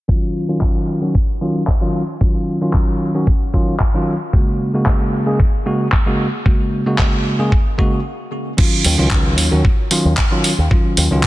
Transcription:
0.08 D#3 F#3 C#4 F4, kick
0.48 D#3 F#3 C#4 F4
0.61 kick, clap
1.01 D#3 F#3 C#4 F#4
1.15 kick
1.41 D#3 F#3 C#4 F4
1.67 kick, clap
1.81 D#3 F#3 C#4 F4
2.21 D#3 F#3 C#4 F4, kick
2.61 D#3 F#3 C#4 F4
2.73 kick, clap
3.14 D#3 F#3 C#4 F#4
3.27 kick
3.53 D#3 F#3 C#4 F4, kick
3.80 kick, clap
3.94 D#3 F#3 C#4 F4
4.33 C#3 G#3 A#3 F#4, kick
4.74 C#3 G#3 A#3 F#4
4.86 kick, clap
5.26 C#3 G#3 A#3 G#4
5.40 kick
5.65 C#3 G#3 A#3 F#4
5.92 kick, clap
6.06 C#3 G#3 A#3 F#4
6.46 C#3 G#3 A#3 F#4, kick
6.86 C#3 G#3 A#3 F#4
6.98 kick, clap
7.39 C#3 G#3 A#3 G#4
7.52 kick
7.78 C#3 G#3 A#3 F#4, kick
8.57 D#3 F#3 C#4 F4, kick, crash
8.85 D#2, open hi-hat
8.98 C#2 D#3 F#3 C#4 F4
9.11 kick, clap
9.38 D#2, open hi-hat
9.51 D#2 D#3 F#3 C#4 F#4
9.65 kick
9.91 D#3 F#3 C#4 F4, open hi-hat
10.05 D#2
10.17 kick, clap
10.31 D#3 F#3 C#4 F4
10.44 open hi-hat
10.58 D#2
10.70 D#3 F#3 C#4 F4, kick
10.97 D#2, open hi-hat
11.11 C#2 D#3 F#3 C#4 F4
11.23 clap

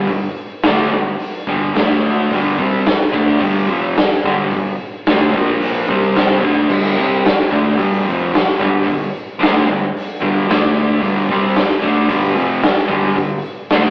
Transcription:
0.07 G2 D3, kick, open hi-hat
0.63 D3 A3 D4, snare, open hi-hat
0.91 G2 D3
1.19 open hi-hat
1.47 G2 D3 G3, kick
1.74 D3 A3 D4, snare, open hi-hat
2.31 G2 D3 G3, kick, open hi-hat
2.58 C3 G3 C4, kick
2.86 muted distorted electric guitar stroke, snare, open hi-hat
3.12 D3 A3 D4, kick
3.39 G2 D3 G3, kick, open hi-hat
3.68 F2 C3 F3
3.97 muted distorted electric guitar stroke, snare, open hi-hat
4.24 G2 D3 G3, kick
4.51 G2 D3, kick, open hi-hat
5.06 D3 A3 D4, snare, open hi-hat
5.34 A#2 F3 A#3, kick
5.62 open hi-hat
5.88 C3 G3 C4, kick
6.16 snare, open hi-hat
6.42 D3 A3 D4, kick
6.69 G2 D3 G3, kick, crash, shaker
6.96 C3 G3 C4, shaker
7.24 muted distorted electric guitar stroke, snare, open hi-hat, shaker
7.51 D3 A3 D4, kick
7.55 shaker
7.77 G2 D3 G3, kick, open hi-hat, shaker
8.06 F2 C3 F3, shaker
8.33 muted distorted electric guitar stroke, snare, open hi-hat
8.37 shaker
8.59 G2 D3 G3, kick, shaker
8.87 G2 D3, kick, open hi-hat, shaker
9.17 shaker
9.39 D3 A3 D4, open hi-hat
9.43 snare, shaker
9.67 G2 D3
9.97 open hi-hat, shaker
10.21 G2 D3 G3, kick, shaker
10.47 D3 A3 D4, snare, open hi-hat, shaker
10.77 shaker
11.00 G2 D3 G3, kick, open hi-hat, shaker
11.29 C3 G3 C4, kick, shaker
11.56 muted distorted electric guitar stroke, snare, open hi-hat, shaker
11.81 D3 A3 D4, kick, shaker
12.08 G2 D3 G3, kick, open hi-hat, shaker
12.35 F2 C3 F3, shaker
12.62 muted distorted electric guitar stroke, snare, open hi-hat, shaker
12.88 G2 D3 G3, kick, shaker
13.16 G2 D3, kick, open hi-hat, shaker
13.44 shaker
13.70 D3 A3 D4, snare, open hi-hat, shaker

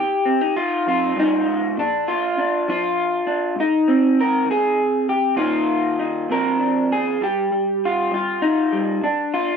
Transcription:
Already playing: D#2 G4
0.25 C4
0.41 D#4
0.57 F4
0.86 F2 F4
1.16 G2 D#4
1.46 G#2
1.77 A#2 D4
2.08 F4
2.38 D4
2.68 F3 F4
3.27 D4
3.56 G#2
3.60 D#4
3.88 C4
4.21 A#4
4.45 D#3
4.51 G#4
5.09 G4
5.36 A#2 D#3 A#3 D#4 F4
5.99 D#4
6.29 A#2 F3 C4 D4 A#4
6.59 D4
6.92 G#4
7.21 G2 G3 G4
7.52 G3
7.85 F4
8.11 G3 F4
8.42 D#4
8.72 G3
9.02 G#2 D4
9.34 F4

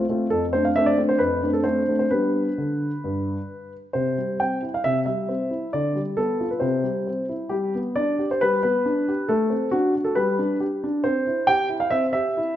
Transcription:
0.09 A3 C4 F4
0.30 F2 A4
0.53 A3 C4 D4 C5
0.65 F5
0.76 A3 C4 D4 E5
0.86 D5
0.98 A3 C4 D4
1.09 C5
1.19 F2 B4
1.43 A3 C4 D4
1.53 A4
1.64 A3 C4 D4 C5
1.88 A3 C4 D4
1.99 C5
2.11 G3 B3 D4 B4
2.58 D3
3.04 G2
3.93 C3 C5
4.18 G3
4.40 C4 G5
4.62 E4
4.74 F5
4.84 C3 E5
5.06 G3 E5
5.29 C4
5.51 E4
5.73 D3 D5
5.95 G3
6.17 B3 A4
6.40 F4
6.51 B4
6.60 C3 C5
6.84 G3
7.07 C4
7.29 E4
7.49 G3 G4
7.75 B3
7.96 D4 D5
8.19 G4
8.31 C5
8.41 G3 B4
8.63 B3 B4
8.86 D4
9.08 G4
9.29 A3 A4
9.50 C4
9.71 D4 F#4
9.95 F#4
10.04 A4
10.15 G3 B4
10.39 D4
10.60 G4
10.84 D4
11.04 C4 C5
11.27 E4
11.47 G4 G5
11.69 E4
11.80 F5
11.90 C4 E5
12.13 G4 E5
12.37 E4

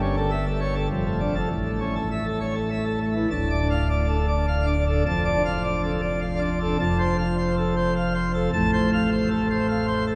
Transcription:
Already playing: G1 G2
0.02 C#4
0.17 A4
0.31 E5
0.47 A4
0.61 C#5
0.75 A4
0.91 F1 F2
1.06 A3
1.21 D4
1.35 A4
1.51 A1 A2
1.66 A3
1.80 C#4
1.96 A4
2.11 E5
2.25 A4
2.41 C#5
2.55 A4
2.70 E5
2.85 A4
3.01 A3
3.16 E3
3.30 D1 D2 A5
3.50 D5
3.61 D4
3.70 F5
3.89 D5
4.03 D4
4.08 A4
4.28 D5
4.48 F5
4.62 D4
4.67 D5
4.87 A4
4.91 D4
5.06 F1 F2 A5
5.25 D5
5.35 D4
5.45 F5
5.64 D5
5.78 D4
5.83 A4
6.01 D5
6.21 F5
6.36 D4
6.41 D5
6.61 D4 A4
6.79 F1 F2 A5
6.99 C5
7.18 F5
7.38 C5
7.57 A4
7.76 C5
7.96 F5
8.15 C5
8.34 A4
8.53 A1 A2 A5
8.73 C5
8.93 F5
9.12 C5
9.31 A4
9.50 C5
9.69 F5
9.87 C5
10.07 A4

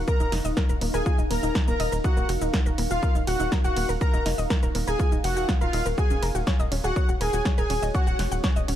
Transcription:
Already playing: D#4 A#4 F5
0.08 A#4 A#5, kick, shaker
0.20 D#1 D#4 D#5, shaker
0.32 F1 D#4 D#5, snare, open hi-hat, ride
0.45 D#1 D#5 D#6, shaker
0.57 A#4 A#5, kick, snare, shaker
0.69 D#1 A#4 A#5, shaker
0.81 D#1 A#3 A#4, open hi-hat, ride
0.94 D#1 G#4 A#4 G#5 A#5, shaker
1.06 F4 F5, kick, shaker
1.18 D#1 D#4 D#5, shaker
1.31 D#1 A#3 A#4 A#5, open hi-hat, ride
1.43 D#1 D#4 D#5, shaker
1.55 A#4 A#5, kick, snare, shaker
1.68 D#1 A#3 A#4 A#5, shaker
1.80 D#1 D#5 D#6, open hi-hat, ride
1.92 D#1 A#4 A#5, shaker
2.04 D#4 F#4 D#5 F#5, kick, shaker
2.17 D#1 A#3 A#4, shaker
2.29 F1 F#4 F#5, open hi-hat, ride
2.41 D#1 D#4 D#5, shaker
2.54 A#4 A#5, kick, snare, shaker
2.66 D#1 A#4 A#5, shaker
2.78 D#1 A#3 A#4, open hi-hat, ride
2.91 D#1 F4 F5, shaker
3.03 A#4 A#5, kick, shaker
3.15 D#1 D#4 D#5, shaker
3.27 D#1 F#4 F#5, open hi-hat, ride
3.40 D#1 D#4 D#5, shaker
3.52 A#4 A#5, kick, snare, shaker
3.64 D#1 F#4 F#5, shaker
3.77 D#1 A#3 A#4, open hi-hat, ride
3.89 D#1 A#4 A#5, shaker
4.01 A#4 A#5, kick, shaker
4.14 D#1 D#4 D#5, shaker
4.26 F1 D#4 D#5, snare, open hi-hat, ride
4.38 D#1 D#5 D#6, shaker
4.50 A#4 A#5, kick, snare, shaker
4.63 D#1 A#4 A#5, shaker
4.75 D#1 A#3 A#4, open hi-hat, ride
4.87 D#1 G#4 A#4 G#5 A#5, shaker
5.00 F4 F5, kick, shaker
5.12 D#1 D#4 D#5, shaker
5.24 F1 F#4 F#5, open hi-hat, ride
5.37 D#1 F#4 F#5, shaker
5.49 F4 F5, kick, snare, shaker
5.61 D#1 F4 A#4 F5 A#5, shaker
5.73 D#1 D#4 D#5, open hi-hat, ride
5.86 D#1 A#4 A#5, shaker
5.98 F#4 G#4 C#5 F#5 G#5, kick, shaker
6.10 D#1 C#4 C#5, shaker
6.22 F1 A#4 A#5, open hi-hat, ride
6.35 D#1 F#4 F#5, shaker
6.47 C#5 C#6, kick, snare, shaker
6.59 D#1 D#5 D#6, shaker
6.72 D#1 C#4 C#5, open hi-hat, ride
6.84 D#1 F#4 G#4 F#5 G#5, shaker
6.96 C#5 C#6, kick, shaker
7.09 D#1 F#4 F#5, shaker
7.21 D#1 G#4 A#4 G#5 A#5, open hi-hat, ride
7.33 D#1 F#4 F#5, shaker
7.45 C#5 C#6, kick, snare, shaker
7.58 D#1 G#4 A#4 G#5 A#5, shaker
7.70 D#1 C#4 C#5, open hi-hat, ride
7.82 D#1 D#5 D#6, shaker
7.94 F#4 C#5 F#5 C#6, kick, shaker
8.07 D#1 F#4 F#5, shaker
8.19 F1 F#4 F#5, snare, open hi-hat, ride
8.32 D#1 F#5 F#6, shaker
8.44 C#5 C#6, kick, snare, shaker
8.56 D#1 D#5 D#6, shaker
8.68 D#1 C#4 C#5, open hi-hat, ride

